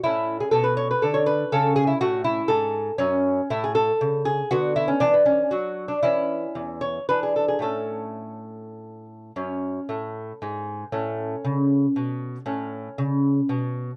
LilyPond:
<<
  \new Staff \with { instrumentName = "Lute" } { \time 3/4 \key a \major \tempo 4 = 117 << { e'8. gis'16 a'16 b'16 cis''16 b'16 a'16 cis''16 b'8 | a'8 gis'16 e'16 fis'8 e'8 a'4 | cis'4 e'16 gis'16 a'4 gis'8 | fis'8 e'16 cis'16 d'16 b16 cis'8 fis'8. d'16 |
e'4. cis''8 b'16 gis'16 a'16 gis'16 | a'2~ a'8 r8 | \key fis \minor r2. | r2. |
r2. | } \\ { cis'2. | cis'2. | r2. | b2. |
cis'2 d'4 | r2. | cis'2. | cis'2. |
cis'2. | } >> }
  \new Staff \with { instrumentName = "Lute" } { \clef bass \time 3/4 \key a \major a,4 b,4 d4 | cis4 a,4 gis,4 | fis,4 a,4 cis4 | d4 e4 fis4 |
e4 e,4 e4 | <a, a cis'>2. | \key fis \minor fis,4 a,4 gis,4 | a,4 cis4 b,4 |
a,4 cis4 b,4 | }
>>